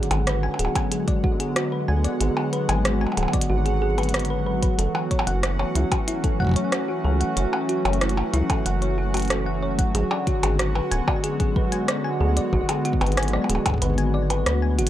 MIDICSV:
0, 0, Header, 1, 7, 480
1, 0, Start_track
1, 0, Tempo, 645161
1, 1641, Time_signature, 4, 2, 24, 8
1, 11082, End_track
2, 0, Start_track
2, 0, Title_t, "Synth texture"
2, 0, Program_c, 0, 99
2, 0, Note_on_c, 0, 78, 84
2, 11082, Note_off_c, 0, 78, 0
2, 11082, End_track
3, 0, Start_track
3, 0, Title_t, "Synth arpeggio sound"
3, 0, Program_c, 1, 84
3, 81, Note_on_c, 1, 68, 75
3, 159, Note_off_c, 1, 68, 0
3, 202, Note_on_c, 1, 71, 87
3, 279, Note_off_c, 1, 71, 0
3, 321, Note_on_c, 1, 80, 77
3, 435, Note_off_c, 1, 80, 0
3, 441, Note_on_c, 1, 68, 76
3, 488, Note_off_c, 1, 68, 0
3, 561, Note_on_c, 1, 80, 76
3, 608, Note_off_c, 1, 80, 0
3, 682, Note_on_c, 1, 68, 82
3, 728, Note_off_c, 1, 68, 0
3, 801, Note_on_c, 1, 74, 76
3, 879, Note_off_c, 1, 74, 0
3, 921, Note_on_c, 1, 66, 77
3, 1035, Note_off_c, 1, 66, 0
3, 1041, Note_on_c, 1, 68, 79
3, 1088, Note_off_c, 1, 68, 0
3, 1161, Note_on_c, 1, 66, 99
3, 1239, Note_off_c, 1, 66, 0
3, 1281, Note_on_c, 1, 71, 75
3, 1359, Note_off_c, 1, 71, 0
3, 1401, Note_on_c, 1, 80, 101
3, 1479, Note_off_c, 1, 80, 0
3, 1521, Note_on_c, 1, 74, 77
3, 1599, Note_off_c, 1, 74, 0
3, 1641, Note_on_c, 1, 68, 82
3, 1752, Note_off_c, 1, 68, 0
3, 1761, Note_on_c, 1, 68, 80
3, 1839, Note_off_c, 1, 68, 0
3, 1881, Note_on_c, 1, 71, 73
3, 1959, Note_off_c, 1, 71, 0
3, 2001, Note_on_c, 1, 80, 79
3, 2115, Note_off_c, 1, 80, 0
3, 2121, Note_on_c, 1, 68, 83
3, 2168, Note_off_c, 1, 68, 0
3, 2241, Note_on_c, 1, 80, 81
3, 2288, Note_off_c, 1, 80, 0
3, 2361, Note_on_c, 1, 68, 77
3, 2408, Note_off_c, 1, 68, 0
3, 2481, Note_on_c, 1, 74, 74
3, 2559, Note_off_c, 1, 74, 0
3, 2601, Note_on_c, 1, 66, 83
3, 2715, Note_off_c, 1, 66, 0
3, 2721, Note_on_c, 1, 68, 73
3, 2768, Note_off_c, 1, 68, 0
3, 2841, Note_on_c, 1, 68, 100
3, 2955, Note_off_c, 1, 68, 0
3, 2961, Note_on_c, 1, 71, 81
3, 3039, Note_off_c, 1, 71, 0
3, 3081, Note_on_c, 1, 71, 83
3, 3128, Note_off_c, 1, 71, 0
3, 3201, Note_on_c, 1, 71, 77
3, 3279, Note_off_c, 1, 71, 0
3, 3321, Note_on_c, 1, 71, 73
3, 3399, Note_off_c, 1, 71, 0
3, 3441, Note_on_c, 1, 71, 75
3, 3488, Note_off_c, 1, 71, 0
3, 3561, Note_on_c, 1, 69, 84
3, 3639, Note_off_c, 1, 69, 0
3, 3682, Note_on_c, 1, 78, 80
3, 3796, Note_off_c, 1, 78, 0
3, 3802, Note_on_c, 1, 73, 75
3, 3848, Note_off_c, 1, 73, 0
3, 3921, Note_on_c, 1, 78, 81
3, 3968, Note_off_c, 1, 78, 0
3, 4042, Note_on_c, 1, 66, 83
3, 4088, Note_off_c, 1, 66, 0
3, 4162, Note_on_c, 1, 73, 79
3, 4239, Note_off_c, 1, 73, 0
3, 4281, Note_on_c, 1, 64, 75
3, 4395, Note_off_c, 1, 64, 0
3, 4401, Note_on_c, 1, 66, 74
3, 4448, Note_off_c, 1, 66, 0
3, 4521, Note_on_c, 1, 64, 104
3, 4599, Note_off_c, 1, 64, 0
3, 4642, Note_on_c, 1, 69, 76
3, 4719, Note_off_c, 1, 69, 0
3, 4762, Note_on_c, 1, 78, 100
3, 4839, Note_off_c, 1, 78, 0
3, 4881, Note_on_c, 1, 73, 77
3, 4959, Note_off_c, 1, 73, 0
3, 5002, Note_on_c, 1, 66, 83
3, 5113, Note_off_c, 1, 66, 0
3, 5122, Note_on_c, 1, 66, 78
3, 5199, Note_off_c, 1, 66, 0
3, 5242, Note_on_c, 1, 69, 76
3, 5319, Note_off_c, 1, 69, 0
3, 5361, Note_on_c, 1, 78, 79
3, 5475, Note_off_c, 1, 78, 0
3, 5481, Note_on_c, 1, 73, 84
3, 5528, Note_off_c, 1, 73, 0
3, 5601, Note_on_c, 1, 78, 80
3, 5648, Note_off_c, 1, 78, 0
3, 5721, Note_on_c, 1, 66, 76
3, 5768, Note_off_c, 1, 66, 0
3, 5841, Note_on_c, 1, 73, 79
3, 5919, Note_off_c, 1, 73, 0
3, 5962, Note_on_c, 1, 64, 81
3, 6076, Note_off_c, 1, 64, 0
3, 6081, Note_on_c, 1, 66, 79
3, 6128, Note_off_c, 1, 66, 0
3, 6201, Note_on_c, 1, 64, 101
3, 6279, Note_off_c, 1, 64, 0
3, 6322, Note_on_c, 1, 69, 73
3, 6399, Note_off_c, 1, 69, 0
3, 6441, Note_on_c, 1, 78, 98
3, 6519, Note_off_c, 1, 78, 0
3, 6561, Note_on_c, 1, 73, 75
3, 6639, Note_off_c, 1, 73, 0
3, 6681, Note_on_c, 1, 66, 77
3, 6792, Note_off_c, 1, 66, 0
3, 6801, Note_on_c, 1, 66, 77
3, 6879, Note_off_c, 1, 66, 0
3, 6921, Note_on_c, 1, 69, 85
3, 6999, Note_off_c, 1, 69, 0
3, 7041, Note_on_c, 1, 78, 75
3, 7155, Note_off_c, 1, 78, 0
3, 7161, Note_on_c, 1, 73, 81
3, 7208, Note_off_c, 1, 73, 0
3, 7281, Note_on_c, 1, 78, 76
3, 7328, Note_off_c, 1, 78, 0
3, 7401, Note_on_c, 1, 68, 83
3, 7448, Note_off_c, 1, 68, 0
3, 7521, Note_on_c, 1, 74, 80
3, 7599, Note_off_c, 1, 74, 0
3, 7641, Note_on_c, 1, 66, 75
3, 7755, Note_off_c, 1, 66, 0
3, 7761, Note_on_c, 1, 68, 75
3, 7808, Note_off_c, 1, 68, 0
3, 7880, Note_on_c, 1, 66, 99
3, 7959, Note_off_c, 1, 66, 0
3, 8000, Note_on_c, 1, 71, 79
3, 8079, Note_off_c, 1, 71, 0
3, 8120, Note_on_c, 1, 80, 100
3, 8198, Note_off_c, 1, 80, 0
3, 8240, Note_on_c, 1, 74, 73
3, 8319, Note_off_c, 1, 74, 0
3, 8360, Note_on_c, 1, 68, 83
3, 8471, Note_off_c, 1, 68, 0
3, 8480, Note_on_c, 1, 68, 75
3, 8558, Note_off_c, 1, 68, 0
3, 8600, Note_on_c, 1, 71, 75
3, 8679, Note_off_c, 1, 71, 0
3, 8721, Note_on_c, 1, 80, 77
3, 8835, Note_off_c, 1, 80, 0
3, 8841, Note_on_c, 1, 74, 80
3, 8888, Note_off_c, 1, 74, 0
3, 8961, Note_on_c, 1, 80, 80
3, 9008, Note_off_c, 1, 80, 0
3, 9081, Note_on_c, 1, 68, 76
3, 9128, Note_off_c, 1, 68, 0
3, 9201, Note_on_c, 1, 74, 76
3, 9279, Note_off_c, 1, 74, 0
3, 9321, Note_on_c, 1, 66, 80
3, 9435, Note_off_c, 1, 66, 0
3, 9441, Note_on_c, 1, 68, 78
3, 9488, Note_off_c, 1, 68, 0
3, 9561, Note_on_c, 1, 66, 105
3, 9639, Note_off_c, 1, 66, 0
3, 9681, Note_on_c, 1, 71, 77
3, 9759, Note_off_c, 1, 71, 0
3, 9801, Note_on_c, 1, 80, 105
3, 9879, Note_off_c, 1, 80, 0
3, 9921, Note_on_c, 1, 74, 77
3, 9999, Note_off_c, 1, 74, 0
3, 10041, Note_on_c, 1, 68, 77
3, 10152, Note_off_c, 1, 68, 0
3, 10161, Note_on_c, 1, 68, 74
3, 10239, Note_off_c, 1, 68, 0
3, 10281, Note_on_c, 1, 71, 83
3, 10359, Note_off_c, 1, 71, 0
3, 10400, Note_on_c, 1, 80, 77
3, 10515, Note_off_c, 1, 80, 0
3, 10520, Note_on_c, 1, 74, 74
3, 10635, Note_off_c, 1, 74, 0
3, 10640, Note_on_c, 1, 71, 77
3, 10752, Note_off_c, 1, 71, 0
3, 10760, Note_on_c, 1, 71, 101
3, 10808, Note_off_c, 1, 71, 0
3, 10880, Note_on_c, 1, 80, 74
3, 10958, Note_off_c, 1, 80, 0
3, 11000, Note_on_c, 1, 66, 101
3, 11078, Note_off_c, 1, 66, 0
3, 11082, End_track
4, 0, Start_track
4, 0, Title_t, "Analog synth pad"
4, 0, Program_c, 2, 89
4, 0, Note_on_c, 2, 50, 85
4, 0, Note_on_c, 2, 54, 77
4, 0, Note_on_c, 2, 56, 87
4, 0, Note_on_c, 2, 59, 81
4, 0, Note_on_c, 2, 61, 88
4, 0, Note_on_c, 2, 66, 77
4, 909, Note_off_c, 2, 61, 0
4, 3561, Note_on_c, 2, 52, 78
4, 3562, Note_off_c, 2, 50, 0
4, 3562, Note_off_c, 2, 56, 0
4, 3824, Note_on_c, 2, 61, 95
4, 3963, Note_on_c, 2, 57, 71
4, 4766, Note_off_c, 2, 59, 0
4, 7400, Note_off_c, 2, 57, 0
4, 7401, Note_off_c, 2, 52, 0
4, 7401, Note_on_c, 2, 50, 95
4, 7714, Note_on_c, 2, 56, 88
4, 8088, Note_on_c, 2, 59, 74
4, 8916, Note_off_c, 2, 61, 0
4, 11082, Note_off_c, 2, 50, 0
4, 11082, Note_off_c, 2, 54, 0
4, 11082, Note_off_c, 2, 56, 0
4, 11082, Note_off_c, 2, 59, 0
4, 11082, Note_off_c, 2, 66, 0
4, 11082, End_track
5, 0, Start_track
5, 0, Title_t, "Acid bass"
5, 0, Program_c, 3, 38
5, 81, Note_on_c, 3, 32, 86
5, 365, Note_off_c, 3, 32, 0
5, 442, Note_on_c, 3, 26, 88
5, 514, Note_off_c, 3, 26, 0
5, 1402, Note_on_c, 3, 38, 89
5, 1546, Note_off_c, 3, 38, 0
5, 1642, Note_on_c, 3, 32, 103
5, 1714, Note_off_c, 3, 32, 0
5, 2001, Note_on_c, 3, 32, 89
5, 2285, Note_off_c, 3, 32, 0
5, 2361, Note_on_c, 3, 26, 92
5, 2433, Note_off_c, 3, 26, 0
5, 2601, Note_on_c, 3, 32, 85
5, 3485, Note_off_c, 3, 32, 0
5, 3562, Note_on_c, 3, 30, 96
5, 3634, Note_off_c, 3, 30, 0
5, 3921, Note_on_c, 3, 30, 88
5, 4205, Note_off_c, 3, 30, 0
5, 4281, Note_on_c, 3, 37, 90
5, 4354, Note_off_c, 3, 37, 0
5, 5242, Note_on_c, 3, 37, 87
5, 5386, Note_off_c, 3, 37, 0
5, 5481, Note_on_c, 3, 30, 93
5, 5554, Note_off_c, 3, 30, 0
5, 5841, Note_on_c, 3, 30, 89
5, 6125, Note_off_c, 3, 30, 0
5, 6201, Note_on_c, 3, 37, 87
5, 6273, Note_off_c, 3, 37, 0
5, 6441, Note_on_c, 3, 30, 80
5, 7325, Note_off_c, 3, 30, 0
5, 7400, Note_on_c, 3, 32, 102
5, 7473, Note_off_c, 3, 32, 0
5, 7761, Note_on_c, 3, 32, 88
5, 8045, Note_off_c, 3, 32, 0
5, 8121, Note_on_c, 3, 26, 87
5, 8193, Note_off_c, 3, 26, 0
5, 9081, Note_on_c, 3, 38, 88
5, 9226, Note_off_c, 3, 38, 0
5, 9321, Note_on_c, 3, 32, 101
5, 9393, Note_off_c, 3, 32, 0
5, 9681, Note_on_c, 3, 32, 91
5, 9964, Note_off_c, 3, 32, 0
5, 10041, Note_on_c, 3, 26, 87
5, 10113, Note_off_c, 3, 26, 0
5, 10281, Note_on_c, 3, 32, 80
5, 10757, Note_off_c, 3, 32, 0
5, 10761, Note_on_c, 3, 38, 79
5, 11001, Note_on_c, 3, 32, 110
5, 11012, Note_off_c, 3, 38, 0
5, 11082, Note_off_c, 3, 32, 0
5, 11082, End_track
6, 0, Start_track
6, 0, Title_t, "Percussion blips"
6, 81, Note_on_c, 9, 60, 74
6, 155, Note_off_c, 9, 60, 0
6, 321, Note_on_c, 9, 60, 21
6, 396, Note_off_c, 9, 60, 0
6, 401, Note_on_c, 9, 60, 30
6, 476, Note_off_c, 9, 60, 0
6, 482, Note_on_c, 9, 60, 38
6, 556, Note_off_c, 9, 60, 0
6, 562, Note_on_c, 9, 60, 80
6, 636, Note_off_c, 9, 60, 0
6, 1761, Note_on_c, 9, 60, 57
6, 1836, Note_off_c, 9, 60, 0
6, 2001, Note_on_c, 9, 60, 73
6, 2076, Note_off_c, 9, 60, 0
6, 2241, Note_on_c, 9, 60, 22
6, 2281, Note_off_c, 9, 60, 0
6, 2281, Note_on_c, 9, 60, 26
6, 2321, Note_off_c, 9, 60, 0
6, 2321, Note_on_c, 9, 60, 30
6, 2361, Note_off_c, 9, 60, 0
6, 2361, Note_on_c, 9, 60, 33
6, 2401, Note_off_c, 9, 60, 0
6, 2401, Note_on_c, 9, 60, 38
6, 2441, Note_off_c, 9, 60, 0
6, 2441, Note_on_c, 9, 60, 44
6, 2515, Note_off_c, 9, 60, 0
6, 2961, Note_on_c, 9, 60, 36
6, 3036, Note_off_c, 9, 60, 0
6, 3681, Note_on_c, 9, 60, 60
6, 3756, Note_off_c, 9, 60, 0
6, 3861, Note_on_c, 9, 60, 73
6, 3936, Note_off_c, 9, 60, 0
6, 4162, Note_on_c, 9, 60, 51
6, 4236, Note_off_c, 9, 60, 0
6, 4402, Note_on_c, 9, 60, 79
6, 4476, Note_off_c, 9, 60, 0
6, 5602, Note_on_c, 9, 60, 59
6, 5677, Note_off_c, 9, 60, 0
6, 5842, Note_on_c, 9, 60, 81
6, 5916, Note_off_c, 9, 60, 0
6, 6081, Note_on_c, 9, 60, 52
6, 6156, Note_off_c, 9, 60, 0
6, 6322, Note_on_c, 9, 60, 81
6, 6396, Note_off_c, 9, 60, 0
6, 6802, Note_on_c, 9, 60, 37
6, 6876, Note_off_c, 9, 60, 0
6, 7521, Note_on_c, 9, 60, 64
6, 7596, Note_off_c, 9, 60, 0
6, 7762, Note_on_c, 9, 60, 85
6, 7836, Note_off_c, 9, 60, 0
6, 8001, Note_on_c, 9, 60, 52
6, 8076, Note_off_c, 9, 60, 0
6, 8241, Note_on_c, 9, 60, 80
6, 8316, Note_off_c, 9, 60, 0
6, 9441, Note_on_c, 9, 60, 64
6, 9515, Note_off_c, 9, 60, 0
6, 9680, Note_on_c, 9, 60, 82
6, 9755, Note_off_c, 9, 60, 0
6, 9921, Note_on_c, 9, 60, 24
6, 9995, Note_off_c, 9, 60, 0
6, 10001, Note_on_c, 9, 60, 33
6, 10075, Note_off_c, 9, 60, 0
6, 10081, Note_on_c, 9, 60, 43
6, 10155, Note_off_c, 9, 60, 0
6, 10161, Note_on_c, 9, 60, 82
6, 10235, Note_off_c, 9, 60, 0
6, 10641, Note_on_c, 9, 60, 39
6, 10715, Note_off_c, 9, 60, 0
6, 11082, End_track
7, 0, Start_track
7, 0, Title_t, "Drums"
7, 21, Note_on_c, 9, 42, 38
7, 81, Note_off_c, 9, 42, 0
7, 81, Note_on_c, 9, 42, 56
7, 155, Note_off_c, 9, 42, 0
7, 201, Note_on_c, 9, 37, 117
7, 201, Note_on_c, 9, 42, 68
7, 276, Note_off_c, 9, 37, 0
7, 276, Note_off_c, 9, 42, 0
7, 441, Note_on_c, 9, 42, 62
7, 516, Note_off_c, 9, 42, 0
7, 561, Note_on_c, 9, 36, 111
7, 562, Note_on_c, 9, 42, 54
7, 635, Note_off_c, 9, 36, 0
7, 636, Note_off_c, 9, 42, 0
7, 682, Note_on_c, 9, 42, 66
7, 756, Note_off_c, 9, 42, 0
7, 801, Note_on_c, 9, 36, 120
7, 801, Note_on_c, 9, 42, 35
7, 875, Note_off_c, 9, 36, 0
7, 876, Note_off_c, 9, 42, 0
7, 921, Note_on_c, 9, 36, 126
7, 995, Note_off_c, 9, 36, 0
7, 1042, Note_on_c, 9, 42, 55
7, 1116, Note_off_c, 9, 42, 0
7, 1162, Note_on_c, 9, 37, 126
7, 1162, Note_on_c, 9, 42, 69
7, 1236, Note_off_c, 9, 37, 0
7, 1236, Note_off_c, 9, 42, 0
7, 1521, Note_on_c, 9, 42, 51
7, 1596, Note_off_c, 9, 42, 0
7, 1641, Note_on_c, 9, 42, 64
7, 1716, Note_off_c, 9, 42, 0
7, 1881, Note_on_c, 9, 42, 36
7, 1956, Note_off_c, 9, 42, 0
7, 2001, Note_on_c, 9, 42, 55
7, 2076, Note_off_c, 9, 42, 0
7, 2121, Note_on_c, 9, 37, 118
7, 2121, Note_on_c, 9, 42, 63
7, 2195, Note_off_c, 9, 37, 0
7, 2195, Note_off_c, 9, 42, 0
7, 2361, Note_on_c, 9, 42, 57
7, 2435, Note_off_c, 9, 42, 0
7, 2481, Note_on_c, 9, 36, 108
7, 2481, Note_on_c, 9, 42, 50
7, 2541, Note_off_c, 9, 42, 0
7, 2541, Note_on_c, 9, 42, 65
7, 2555, Note_off_c, 9, 36, 0
7, 2615, Note_off_c, 9, 42, 0
7, 2721, Note_on_c, 9, 42, 36
7, 2795, Note_off_c, 9, 42, 0
7, 2961, Note_on_c, 9, 42, 24
7, 3001, Note_off_c, 9, 42, 0
7, 3001, Note_on_c, 9, 42, 28
7, 3041, Note_off_c, 9, 42, 0
7, 3041, Note_on_c, 9, 42, 34
7, 3081, Note_off_c, 9, 42, 0
7, 3081, Note_on_c, 9, 37, 122
7, 3081, Note_on_c, 9, 42, 64
7, 3121, Note_off_c, 9, 42, 0
7, 3121, Note_on_c, 9, 42, 39
7, 3155, Note_off_c, 9, 37, 0
7, 3161, Note_off_c, 9, 42, 0
7, 3161, Note_on_c, 9, 42, 43
7, 3235, Note_off_c, 9, 42, 0
7, 3441, Note_on_c, 9, 36, 121
7, 3441, Note_on_c, 9, 42, 51
7, 3516, Note_off_c, 9, 36, 0
7, 3516, Note_off_c, 9, 42, 0
7, 3562, Note_on_c, 9, 42, 62
7, 3636, Note_off_c, 9, 42, 0
7, 3801, Note_on_c, 9, 36, 88
7, 3802, Note_on_c, 9, 42, 36
7, 3876, Note_off_c, 9, 36, 0
7, 3876, Note_off_c, 9, 42, 0
7, 3922, Note_on_c, 9, 42, 52
7, 3996, Note_off_c, 9, 42, 0
7, 4042, Note_on_c, 9, 37, 110
7, 4042, Note_on_c, 9, 42, 61
7, 4116, Note_off_c, 9, 37, 0
7, 4116, Note_off_c, 9, 42, 0
7, 4282, Note_on_c, 9, 42, 57
7, 4356, Note_off_c, 9, 42, 0
7, 4401, Note_on_c, 9, 36, 103
7, 4402, Note_on_c, 9, 42, 51
7, 4476, Note_off_c, 9, 36, 0
7, 4476, Note_off_c, 9, 42, 0
7, 4522, Note_on_c, 9, 42, 61
7, 4596, Note_off_c, 9, 42, 0
7, 4641, Note_on_c, 9, 36, 111
7, 4642, Note_on_c, 9, 42, 35
7, 4716, Note_off_c, 9, 36, 0
7, 4716, Note_off_c, 9, 42, 0
7, 4761, Note_on_c, 9, 36, 53
7, 4778, Note_off_c, 9, 36, 0
7, 4778, Note_on_c, 9, 36, 61
7, 4796, Note_off_c, 9, 36, 0
7, 4796, Note_on_c, 9, 36, 71
7, 4813, Note_off_c, 9, 36, 0
7, 4813, Note_on_c, 9, 36, 75
7, 4830, Note_off_c, 9, 36, 0
7, 4830, Note_on_c, 9, 36, 85
7, 4847, Note_off_c, 9, 36, 0
7, 4847, Note_on_c, 9, 36, 97
7, 4864, Note_off_c, 9, 36, 0
7, 4864, Note_on_c, 9, 36, 108
7, 4882, Note_on_c, 9, 42, 50
7, 4938, Note_off_c, 9, 36, 0
7, 4956, Note_off_c, 9, 42, 0
7, 5002, Note_on_c, 9, 37, 116
7, 5002, Note_on_c, 9, 42, 62
7, 5076, Note_off_c, 9, 37, 0
7, 5076, Note_off_c, 9, 42, 0
7, 5362, Note_on_c, 9, 42, 48
7, 5436, Note_off_c, 9, 42, 0
7, 5482, Note_on_c, 9, 42, 63
7, 5556, Note_off_c, 9, 42, 0
7, 5722, Note_on_c, 9, 42, 35
7, 5797, Note_off_c, 9, 42, 0
7, 5842, Note_on_c, 9, 42, 22
7, 5902, Note_off_c, 9, 42, 0
7, 5902, Note_on_c, 9, 42, 30
7, 5962, Note_off_c, 9, 42, 0
7, 5962, Note_on_c, 9, 37, 110
7, 5962, Note_on_c, 9, 42, 59
7, 6022, Note_off_c, 9, 42, 0
7, 6022, Note_on_c, 9, 42, 41
7, 6036, Note_off_c, 9, 37, 0
7, 6096, Note_off_c, 9, 42, 0
7, 6202, Note_on_c, 9, 42, 57
7, 6276, Note_off_c, 9, 42, 0
7, 6321, Note_on_c, 9, 36, 102
7, 6322, Note_on_c, 9, 42, 50
7, 6396, Note_off_c, 9, 36, 0
7, 6396, Note_off_c, 9, 42, 0
7, 6442, Note_on_c, 9, 42, 63
7, 6516, Note_off_c, 9, 42, 0
7, 6562, Note_on_c, 9, 42, 33
7, 6636, Note_off_c, 9, 42, 0
7, 6802, Note_on_c, 9, 42, 48
7, 6822, Note_off_c, 9, 42, 0
7, 6822, Note_on_c, 9, 42, 39
7, 6842, Note_off_c, 9, 42, 0
7, 6842, Note_on_c, 9, 42, 34
7, 6862, Note_off_c, 9, 42, 0
7, 6862, Note_on_c, 9, 42, 26
7, 6881, Note_off_c, 9, 42, 0
7, 6881, Note_on_c, 9, 42, 22
7, 6902, Note_off_c, 9, 42, 0
7, 6902, Note_on_c, 9, 42, 18
7, 6922, Note_off_c, 9, 42, 0
7, 6922, Note_on_c, 9, 37, 110
7, 6922, Note_on_c, 9, 42, 61
7, 6996, Note_off_c, 9, 37, 0
7, 6996, Note_off_c, 9, 42, 0
7, 7281, Note_on_c, 9, 36, 115
7, 7282, Note_on_c, 9, 42, 51
7, 7355, Note_off_c, 9, 36, 0
7, 7356, Note_off_c, 9, 42, 0
7, 7401, Note_on_c, 9, 42, 63
7, 7476, Note_off_c, 9, 42, 0
7, 7641, Note_on_c, 9, 36, 83
7, 7641, Note_on_c, 9, 42, 36
7, 7715, Note_off_c, 9, 36, 0
7, 7716, Note_off_c, 9, 42, 0
7, 7762, Note_on_c, 9, 42, 52
7, 7836, Note_off_c, 9, 42, 0
7, 7882, Note_on_c, 9, 37, 106
7, 7882, Note_on_c, 9, 42, 64
7, 7956, Note_off_c, 9, 37, 0
7, 7956, Note_off_c, 9, 42, 0
7, 8121, Note_on_c, 9, 42, 58
7, 8196, Note_off_c, 9, 42, 0
7, 8241, Note_on_c, 9, 36, 99
7, 8315, Note_off_c, 9, 36, 0
7, 8361, Note_on_c, 9, 42, 66
7, 8435, Note_off_c, 9, 42, 0
7, 8481, Note_on_c, 9, 36, 109
7, 8481, Note_on_c, 9, 42, 37
7, 8555, Note_off_c, 9, 36, 0
7, 8556, Note_off_c, 9, 42, 0
7, 8601, Note_on_c, 9, 36, 113
7, 8675, Note_off_c, 9, 36, 0
7, 8721, Note_on_c, 9, 42, 52
7, 8795, Note_off_c, 9, 42, 0
7, 8841, Note_on_c, 9, 37, 106
7, 8841, Note_on_c, 9, 42, 64
7, 8915, Note_off_c, 9, 37, 0
7, 8915, Note_off_c, 9, 42, 0
7, 9201, Note_on_c, 9, 42, 51
7, 9276, Note_off_c, 9, 42, 0
7, 9321, Note_on_c, 9, 36, 79
7, 9395, Note_off_c, 9, 36, 0
7, 9441, Note_on_c, 9, 42, 66
7, 9515, Note_off_c, 9, 42, 0
7, 9561, Note_on_c, 9, 42, 35
7, 9621, Note_on_c, 9, 36, 87
7, 9635, Note_off_c, 9, 42, 0
7, 9680, Note_on_c, 9, 42, 25
7, 9695, Note_off_c, 9, 36, 0
7, 9721, Note_off_c, 9, 42, 0
7, 9721, Note_on_c, 9, 42, 29
7, 9761, Note_off_c, 9, 42, 0
7, 9761, Note_on_c, 9, 42, 34
7, 9801, Note_off_c, 9, 42, 0
7, 9801, Note_on_c, 9, 37, 115
7, 9801, Note_on_c, 9, 42, 65
7, 9841, Note_off_c, 9, 42, 0
7, 9841, Note_on_c, 9, 42, 43
7, 9876, Note_off_c, 9, 37, 0
7, 9881, Note_off_c, 9, 42, 0
7, 9881, Note_on_c, 9, 42, 46
7, 9921, Note_on_c, 9, 37, 60
7, 9955, Note_off_c, 9, 42, 0
7, 9995, Note_off_c, 9, 37, 0
7, 10041, Note_on_c, 9, 42, 62
7, 10115, Note_off_c, 9, 42, 0
7, 10161, Note_on_c, 9, 36, 93
7, 10161, Note_on_c, 9, 42, 54
7, 10191, Note_off_c, 9, 36, 0
7, 10191, Note_on_c, 9, 36, 81
7, 10221, Note_off_c, 9, 36, 0
7, 10221, Note_on_c, 9, 36, 67
7, 10235, Note_off_c, 9, 42, 0
7, 10251, Note_off_c, 9, 36, 0
7, 10251, Note_on_c, 9, 36, 55
7, 10281, Note_off_c, 9, 36, 0
7, 10281, Note_on_c, 9, 36, 43
7, 10281, Note_on_c, 9, 42, 65
7, 10311, Note_off_c, 9, 36, 0
7, 10311, Note_on_c, 9, 36, 36
7, 10341, Note_off_c, 9, 36, 0
7, 10341, Note_on_c, 9, 36, 29
7, 10355, Note_off_c, 9, 42, 0
7, 10371, Note_off_c, 9, 36, 0
7, 10371, Note_on_c, 9, 36, 23
7, 10401, Note_on_c, 9, 42, 37
7, 10445, Note_off_c, 9, 36, 0
7, 10475, Note_off_c, 9, 42, 0
7, 10641, Note_on_c, 9, 42, 56
7, 10715, Note_off_c, 9, 42, 0
7, 10761, Note_on_c, 9, 37, 115
7, 10761, Note_on_c, 9, 42, 67
7, 10835, Note_off_c, 9, 37, 0
7, 10835, Note_off_c, 9, 42, 0
7, 11001, Note_on_c, 9, 42, 55
7, 11075, Note_off_c, 9, 42, 0
7, 11082, End_track
0, 0, End_of_file